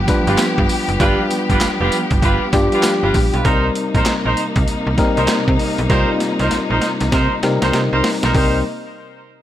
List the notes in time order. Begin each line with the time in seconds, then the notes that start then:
Already playing: F3 G3 B3 D4 F4 G4 B4
0.08 G3 D4 F4 B4, kick, snare, closed hi-hat, tambourine
0.27 G1 F4 G4 B4, closed hi-hat
0.38 snare, clap, closed hi-hat, tambourine
0.58 G2, kick
0.69 open hi-hat, tambourine
0.88 F#1, closed hi-hat
1.00 G1 G3 D4 F4 G4 B4, kick, closed hi-hat, tambourine
1.30 closed hi-hat, tambourine
1.49 G1 F4 G4 B4, kick, closed hi-hat
1.60 F1, snare, clap, closed hi-hat, tambourine
1.80 F1 F4 G4 B4
1.92 closed hi-hat, tambourine
2.11 G1, kick, closed hi-hat
2.22 G1 F4 G4 B4, kick, closed hi-hat
2.53 G2 G3 D4 F4 G4, kick, snare, closed hi-hat, tambourine
2.72 F4 G4 B4, closed hi-hat
2.83 snare, clap, closed hi-hat, tambourine
3.03 G1 F4 G4 B4
3.14 A#1, kick, open hi-hat, tambourine
3.33 B1 F4 G4 B4, closed hi-hat
3.45 C2 C3 G3 A#3 C4 D#4 A#4 C5, kick, closed hi-hat
3.75 closed hi-hat
3.94 A#1 D#4 A#4 C5, kick, closed hi-hat
4.05 snare, clap, closed hi-hat
4.25 A#1 D#4 A#4 C5
4.37 closed hi-hat
4.56 C2, kick, closed hi-hat
4.68 closed hi-hat
4.87 C2
4.98 G3 C4 D#4 A#4, kick, snare, closed hi-hat
5.17 C2 D#4 A#4 C5, closed hi-hat
5.28 snare, clap, closed hi-hat
5.48 C3, kick
5.59 open hi-hat
5.78 B1, closed hi-hat
5.89 C2 G3 C4 D#4 F4 A#4 C5, kick, snare, closed hi-hat
6.20 snare, closed hi-hat
6.39 C2 D#4 A#4 C5, snare, closed hi-hat
6.51 snare, closed hi-hat
6.70 A#1 D#4 A#4 C5
6.82 snare, closed hi-hat
7.00 C2, snare, closed hi-hat
7.12 C3 D#4 A#4 C5, kick, snare, closed hi-hat
7.43 C3 G3 C4 D#4 A#4, snare, closed hi-hat
7.62 C2 D#4 A#4 C5, snare, closed hi-hat
7.73 C3, snare, closed hi-hat
7.92 C2 D#4 A#4 C5
8.04 snare, open hi-hat
8.23 B1 D#4 A#4 C5, snare, closed hi-hat
8.34 C2 C3 G3 A#3 C4 D#4 A#4 C5, kick, open hi-hat